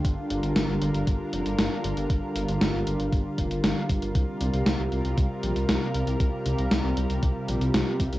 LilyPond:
<<
  \new Staff \with { instrumentName = "Analog synth pad" } { \time 4/4 \key g \dorian \tempo 4 = 117 << { <d bes'>1~ | <d bes'>1 | <c bes'>1~ | <c bes'>1 | } \\ { <g f'>1~ | <g f'>1~ | <g f'>1~ | <g f'>1 | } >> }
  \new Staff \with { instrumentName = "Detuned saw bass" } { \clef bass \time 4/4 \key g \dorian g,,16 r16 g,,16 g,,16 g,,16 g,,16 g,,16 g,,16 g,,16 r16 f,,16 g,,16 g,,16 r16 g,,16 g,,16 | g,,16 r16 g,,16 g,,16 g,,16 g,,16 g,,16 g,,16 g,,16 r16 f,,16 g,,16 g,,16 r16 g,,16 g,,16 | c,16 r16 c,16 c,16 c,16 c,16 c,16 c,16 c,16 r16 bes,,16 c,16 c,16 r16 c,16 c,16 | c,16 r16 c,16 c,16 c,16 c,16 c,16 c,16 c,16 r16 bes,,16 c,16 c,16 r16 c,16 c,16 | }
  \new DrumStaff \with { instrumentName = "Drums" } \drummode { \time 4/4 <hh bd>8 hh16 hh16 <hh sn>8 hh16 hh16 <hh bd>8 hh16 hh16 <hh sn>8 hh16 hh16 | <hh bd>8 hh16 hh16 <hh sn>8 hh16 hh16 <hh bd>8 <hh bd>16 hh16 <hh sn>8 <hh bd>16 hh16 | <hh bd>8 hh16 hh16 <hh sn>8 hh16 hh16 <hh bd>8 hh16 hh16 <hh sn>8 hh16 hh16 | <hh bd>8 hh16 hh16 <hh sn>8 hh16 hh16 <hh bd>8 hh16 hh16 <hh sn>8 <hh bd>16 hh16 | }
>>